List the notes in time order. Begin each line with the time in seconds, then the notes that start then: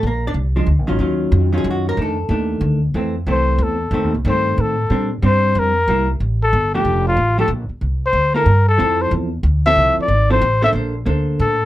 0.03 A#1 A#3
0.07 A#4
0.27 D4 D5
0.34 C2
0.56 F3 G#3 D4
0.66 D2
0.79 A#1
0.87 G#1 D#3 F#3 C#4 F4
0.99 D#2 D#3 F#3 C#4 F4
1.32 F2
1.52 D#3 F#3 C#4 F4
1.58 G#4
1.64 F#2
1.71 F#4
1.89 A#4
1.97 F2 D#3 A3 D4
2.02 A4
2.29 D#2 D#3 A3 D4
2.61 D2
2.94 F2 E3 A3 C4
3.27 C2 E3 A3 C4
3.31 C5
3.58 E2
3.63 A4
3.91 F2 D#3 A3 C4
4.04 D#2
4.14 C2
4.25 G2 D#3 A3 C4
4.29 C5
4.58 A2 A4
4.90 A#2 G3 C4 D4
5.22 G2 G3 C4 D4 C5
5.55 F2 A#4
5.88 C2 G3 A#3 E4
6.20 A1
6.43 A4
6.53 G1
6.74 F3 A3 D4 G4
6.85 F1
7.08 F4
7.17 A1
7.38 F3 A3 D4 G4 A4
7.48 A#1
7.69 muted upright bass stroke
7.81 C2
8.06 C5
8.13 D2
8.34 A#3 E4 A4 A#4
8.46 G2
8.68 A4
8.78 F2 F3 C4 E4 A4
9.02 C5
9.11 E2
9.43 D2
9.66 F3 C4 E4 A4 E5
9.76 C2
9.97 muted upright bass stroke
10.01 D5
10.08 G#1
10.30 F3 C4 E4 A4 C5
10.41 A1
10.62 A#3 D4 A4 C5 E5
10.73 A#1 A#3 D4 A4 C5
11.06 D2 A#3 D4 A4 C5
11.39 A2 A4